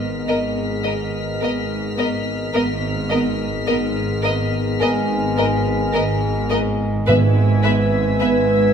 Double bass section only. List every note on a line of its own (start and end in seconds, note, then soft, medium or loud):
0.00 0.15 G#1 soft
0.28 1.28 G#1 medium
1.41 2.41 G#1 medium
2.54 3.54 G#1 medium
3.68 4.68 G#1 medium
4.81 5.81 G#1 medium
5.94 6.94 G#1 medium
7.08 8.07 G#1 medium
8.21 8.73 G#1 medium